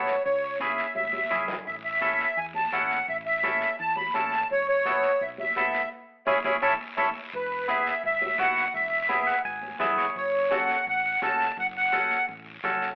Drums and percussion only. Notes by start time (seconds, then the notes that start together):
0.07 short guiro
0.26 long guiro
0.60 high conga, short guiro
0.78 short guiro
0.95 high conga, long guiro
1.13 high conga
1.31 low conga, short guiro
1.48 low conga, short guiro
1.67 long guiro
2.01 high conga, short guiro
2.20 short guiro
2.37 long guiro
2.54 high conga
2.72 high conga, short guiro
2.91 short guiro
3.08 long guiro
3.43 high conga, short guiro
3.61 short guiro
3.79 long guiro
3.96 high conga
4.14 high conga, short guiro
4.32 short guiro
4.50 long guiro
4.85 high conga, short guiro
5.03 short guiro
5.21 long guiro
5.38 high conga
5.56 high conga, short guiro
5.74 short guiro
6.27 high conga, long guiro
6.44 high conga, long guiro
6.62 high conga, long guiro
6.98 high conga, long guiro
7.34 long guiro
7.68 high conga, short guiro
7.86 short guiro
8.03 long guiro
8.22 high conga
8.39 high conga, short guiro
8.57 short guiro
8.75 long guiro
9.10 high conga, short guiro
9.28 short guiro
9.45 long guiro
9.62 high conga
9.80 high conga, low conga, short guiro
9.99 short guiro
10.16 long guiro
10.51 high conga, short guiro
10.69 short guiro
10.87 long guiro
11.22 high conga, short guiro
11.41 short guiro
11.58 long guiro
11.93 high conga, short guiro
12.11 short guiro
12.29 long guiro
12.64 high conga, low conga, short guiro
12.82 short guiro